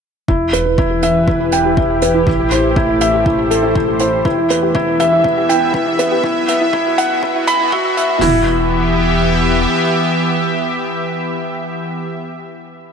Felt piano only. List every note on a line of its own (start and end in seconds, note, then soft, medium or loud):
0.28 0.52 E4 medium
0.53 0.77 B4 medium
0.78 1.02 E4 medium
1.03 1.27 E5 medium
1.28 1.51 E4 medium
1.53 1.76 G5 medium
1.77 2.01 E4 medium
2.02 2.26 B4 medium
2.27 2.51 E4 medium
2.52 2.75 C5 medium
2.77 3.00 E4 medium
3.01 3.25 E5 medium
3.26 3.50 E4 medium
3.51 3.74 A4 medium
3.76 3.99 E4 medium
4.00 4.24 C5 medium
4.25 4.49 E4 medium
4.50 4.74 B4 medium
4.75 4.99 E4 loud
5.00 5.23 E5 loud
5.25 5.48 E4 medium
5.49 5.73 G5 medium
5.74 5.98 E4 medium
5.99 6.23 B4 medium
6.24 6.47 E4 medium
6.48 6.72 E5 medium
6.73 6.97 E4 loud
6.98 7.22 F#5 loud
7.23 7.46 E4 medium
7.47 7.71 B5 loud
7.72 7.96 F#4 loud
7.97 8.21 E5 medium
8.22 8.45 E4 loud